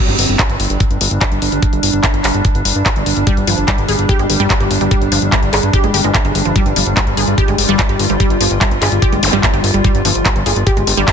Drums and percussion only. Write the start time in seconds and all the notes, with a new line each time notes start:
0.08 closed hi-hat
0.19 open hi-hat
0.29 closed hi-hat
0.39 kick, clap, closed hi-hat
0.49 closed hi-hat
0.60 open hi-hat
0.70 closed hi-hat
0.80 kick, closed hi-hat
0.91 closed hi-hat
1.01 open hi-hat
1.11 closed hi-hat
1.21 kick, clap, closed hi-hat
1.32 closed hi-hat
1.42 open hi-hat
1.52 closed hi-hat
1.62 kick, closed hi-hat
1.73 closed hi-hat
1.83 open hi-hat
1.93 closed hi-hat
2.04 kick, clap, closed hi-hat
2.14 closed hi-hat
2.24 clap, open hi-hat
2.34 closed hi-hat
2.45 kick, closed hi-hat
2.55 closed hi-hat
2.65 open hi-hat
2.75 closed hi-hat
2.86 kick, clap, closed hi-hat
2.96 closed hi-hat
3.06 open hi-hat
3.17 closed hi-hat
3.27 kick, closed hi-hat
3.37 closed hi-hat
3.47 open hi-hat
3.58 closed hi-hat
3.68 kick, clap, closed hi-hat
3.78 closed hi-hat
3.89 open hi-hat
3.99 closed hi-hat
4.09 kick, closed hi-hat
4.19 closed hi-hat
4.30 open hi-hat
4.40 closed hi-hat
4.50 kick, clap, closed hi-hat
4.60 closed hi-hat
4.71 open hi-hat
4.81 closed hi-hat
4.91 kick, closed hi-hat
5.02 closed hi-hat
5.12 open hi-hat
5.22 closed hi-hat
5.32 kick, clap, closed hi-hat
5.43 closed hi-hat
5.53 clap, open hi-hat
5.63 closed hi-hat
5.73 kick, closed hi-hat
5.84 closed hi-hat
5.94 open hi-hat
6.04 closed hi-hat
6.15 kick, clap, closed hi-hat
6.25 closed hi-hat
6.35 open hi-hat
6.45 closed hi-hat
6.56 kick, closed hi-hat
6.66 closed hi-hat
6.76 open hi-hat
6.86 closed hi-hat
6.97 kick, clap, closed hi-hat
7.07 closed hi-hat
7.17 open hi-hat
7.28 closed hi-hat
7.38 kick, closed hi-hat
7.48 closed hi-hat
7.58 open hi-hat
7.69 closed hi-hat
7.79 kick, clap, closed hi-hat
7.89 closed hi-hat
7.99 open hi-hat
8.10 closed hi-hat
8.20 kick, closed hi-hat
8.30 closed hi-hat
8.41 open hi-hat
8.51 closed hi-hat
8.61 kick, clap, closed hi-hat
8.71 closed hi-hat
8.82 clap, open hi-hat
8.92 closed hi-hat
9.02 kick, closed hi-hat
9.13 closed hi-hat
9.23 open hi-hat
9.33 closed hi-hat
9.43 kick, clap, closed hi-hat
9.54 closed hi-hat
9.64 open hi-hat
9.74 closed hi-hat
9.84 kick, closed hi-hat
9.95 closed hi-hat
10.05 open hi-hat
10.15 closed hi-hat
10.26 kick, clap, closed hi-hat
10.36 closed hi-hat
10.46 open hi-hat
10.56 closed hi-hat
10.67 kick, closed hi-hat
10.77 closed hi-hat
10.87 open hi-hat
10.97 closed hi-hat
11.08 kick, clap, closed hi-hat